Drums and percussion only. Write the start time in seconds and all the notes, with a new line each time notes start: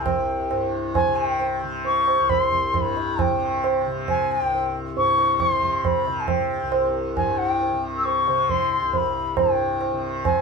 0.06 tabla na, tabla ge
0.51 tabla na
0.95 tabla na, tabla ge
1.39 tabla tin
1.85 tabla tin
2.08 tabla na
2.30 tabla na, tabla ge
2.51 tabla ge
2.74 tabla na, tabla ge
2.97 tabla te
3.19 tabla na, tabla ge
3.64 tabla na
4.08 tabla na, tabla ge
4.53 tabla tin
4.97 tabla tin
5.18 tabla na
5.40 tabla na, tabla ge
5.62 tabla ge
5.85 tabla na, tabla ge
6.07 tabla te
6.28 tabla na, tabla ge
6.72 tabla na
7.17 tabla na, tabla ge
7.61 tabla tin
8.05 tabla tin
8.28 tabla na
8.49 tabla tin, tabla ge
8.93 tabla tin, tabla ge
9.37 tabla na, tabla ge
9.81 tabla na
10.25 tabla na, tabla ge